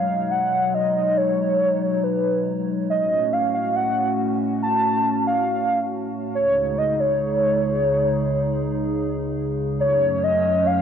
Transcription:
Already playing: ambient pad B2 F#3 G#3 D#4 C#5, soft synth lead F5
0.31 soft synth lead F#5
0.74 soft synth lead D#5
1.17 soft synth lead C#5
2.03 soft synth lead B4
2.90 ambient pad A2 A3 C#4 F#4, soft synth lead D#5
3.33 soft synth lead F5
3.54 soft synth lead F5
3.76 soft synth lead F#5
4.62 soft synth lead A5
5.27 soft synth lead F5
6.35 ambient pad C#2 C#3 G#3 D#4 G#4, soft synth lead C#5
6.78 soft synth lead D#5
7.00 soft synth lead C#5
9.80 ambient pad F#2 F#3 A3 C#4 C#5, soft synth lead C#5
10.23 soft synth lead D#5
10.66 soft synth lead F5

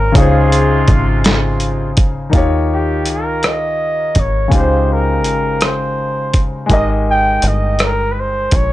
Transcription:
Already playing: fingered electric bass G#1, grand piano A#3 C#4 F4 G#4 C5, flugelhorn A#4
0.12 fingered electric bass C#2, horn section C3 G#3 F4, grand piano C#3 D#4 C#5, kick, closed hi-hat
0.17 grand piano F4 C5, flugelhorn G#4
0.52 closed hi-hat
0.88 fingered electric bass G#1, kick, closed hi-hat
1.24 snare, closed hi-hat
1.60 closed hi-hat
1.97 kick, closed hi-hat
2.30 fingered electric bass D#2, grand piano D#3 D#4 F4, kick, closed hi-hat
2.35 grand piano G4 C#5
2.73 flugelhorn G4
3.06 fingered electric bass C#2, closed hi-hat
3.11 flugelhorn A#4
3.43 flugelhorn D#5, cross-stick, closed hi-hat
4.15 fingered electric bass G#1, kick, closed hi-hat
4.20 flugelhorn C#5
4.48 fingered electric bass C#2, grand piano C#3 G#3 D#4, kick, closed hi-hat
4.52 grand piano F4 G4 C5, flugelhorn C5
4.93 flugelhorn A#4
5.24 fingered electric bass G#1, closed hi-hat
5.61 cross-stick, closed hi-hat
5.65 flugelhorn C5
6.34 kick, closed hi-hat
6.66 fingered electric bass G#1, grand piano G#3 D#4 G4, kick, closed hi-hat
6.72 grand piano A#4 D#5, flugelhorn D#5
7.11 flugelhorn G5
7.42 fingered electric bass G1, closed hi-hat
7.48 flugelhorn D#5
7.79 cross-stick, closed hi-hat
7.84 flugelhorn A#4
8.12 flugelhorn B4
8.20 flugelhorn C5
8.51 fingered electric bass A#1, kick, closed hi-hat
8.56 flugelhorn C#5

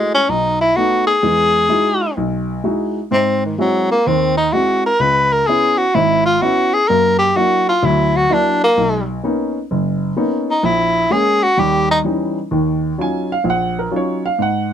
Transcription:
Already playing: tenor saxophone G#3, grand piano G#3 A3 E4 F#4
0.15 tenor saxophone C#4
0.29 grand piano B1, tenor saxophone D#4
0.61 tenor saxophone E4
0.76 grand piano A3 B3 D#4, tenor saxophone F#4
1.07 tenor saxophone G#4
1.23 grand piano E2 G#3
1.69 grand piano G#3 D#4 E4 F#4
2.17 grand piano B1
2.64 grand piano G#3 D#4 E4 F#4
3.11 grand piano G#2, tenor saxophone C4
3.45 tenor saxophone D#3
3.58 tenor saxophone F#3, grand piano G#3 C4 E4 F#4
3.91 tenor saxophone A#3
4.07 grand piano D#2 D#3, tenor saxophone C4
4.37 tenor saxophone D#4
4.53 grand piano G#3 C4 E4 F#4, tenor saxophone F#4
4.86 tenor saxophone A#4
5.00 grand piano C#2 C#3, tenor saxophone B4
5.33 tenor saxophone A#4
5.47 grand piano B3 C#4 E4, tenor saxophone G#4
5.78 tenor saxophone F#4
5.95 grand piano G#1 G#2, tenor saxophone E4
6.26 tenor saxophone F4
6.42 grand piano B3 C#4 E4, tenor saxophone F#4
6.74 tenor saxophone G#4
6.88 grand piano F#2 A#3, tenor saxophone A#4
7.19 tenor saxophone G4
7.36 grand piano F#3 A#3 D4 E4, tenor saxophone F#4
7.69 tenor saxophone F4
7.83 grand piano D2 F#3, tenor saxophone E4
8.17 tenor saxophone F#4
8.30 grand piano F#3 A#3 D4 E4, tenor saxophone D4
8.64 tenor saxophone A#3
8.77 grand piano B1
9.23 grand piano A#3 B3 C#4 D#4
9.71 grand piano F#1
10.17 grand piano A#3 B3 C#4 D#4
10.51 tenor saxophone D#4
10.63 grand piano A#1, tenor saxophone E4
11.10 grand piano G#3 A#3 C#4, tenor saxophone G#4
11.43 tenor saxophone F#4
11.57 grand piano D#2 G3, tenor saxophone G4
11.91 tenor saxophone D#4
12.04 grand piano E3 G3 C#4 D#4
12.51 grand piano D#2 D#3
12.98 grand piano F#3 C#4 D#4 F4 G#5
13.32 grand piano F5
13.44 grand piano A#1 F5
13.50 grand piano F#5
13.79 grand piano A#4
13.91 grand piano F#3 C#4 D#4 F4
13.96 grand piano C#5
14.26 grand piano F5
14.39 grand piano G#2 F#5

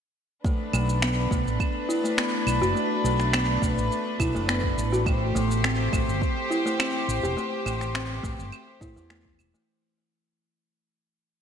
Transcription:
0.44 kalimba A3, string section A3 D4 B4, kick, shaker
0.73 fretless electric bass B1, kalimba A3, claves, shaker
0.89 shaker
1.02 kalimba B3, finger snap, shaker
1.31 fretless electric bass B1, kalimba A3, kick, shaker
1.46 fretless electric bass A1, shaker
1.60 kick, claves, shaker
1.89 kalimba E4, shaker
2.04 kalimba A3, shaker
2.18 kalimba B3, finger snap, shaker
2.47 fretless electric bass B1, claves, shaker
2.61 fretless electric bass F#1, kalimba F#4, shaker
2.75 kalimba A3, shaker
3.04 fretless electric bass B1, kalimba A3, shaker
3.20 finger snap, shaker
3.33 kalimba B3, finger snap, claves, shaker
3.62 fretless electric bass B1, kalimba A3, kick, shaker
3.77 fretless electric bass A1, shaker
3.92 shaker
4.20 fretless electric bass B1, kalimba E4, kick, claves, shaker
4.35 fretless electric bass F#1, kalimba A3, shaker
4.48 kalimba B3, finger snap, shaker
4.64 kick
4.78 fretless electric bass A1, shaker
4.92 kalimba F#4, shaker
5.06 kalimba A3, string section G4 C5, kick, claves, shaker
5.35 fretless electric bass A1, kalimba A3, shaker
5.51 shaker
5.64 kalimba C4, finger snap, shaker
5.93 fretless electric bass A1, kalimba A3, kick, claves, shaker
6.08 fretless electric bass G1, shaker
6.22 kick, shaker
6.50 kalimba E4, shaker
6.66 kalimba A3, shaker
6.79 kalimba C4, finger snap, claves, shaker
7.08 fretless electric bass A1, shaker
7.23 fretless electric bass E1, kalimba G4, shaker
7.37 kalimba A3, shaker
7.66 fretless electric bass A1, kalimba A3, claves, shaker
7.81 finger snap, shaker
7.95 kalimba C4, finger snap, shaker
8.23 fretless electric bass A1, kalimba A3, kick, shaker
8.39 fretless electric bass G1, shaker
8.52 claves, shaker
8.81 fretless electric bass A2, kalimba E4, kick, shaker
8.96 fretless electric bass E2, kalimba E3, shaker
9.10 kalimba A3, finger snap, shaker
9.25 kick
9.39 fretless electric bass E1, claves, shaker
9.54 kalimba A3, shaker

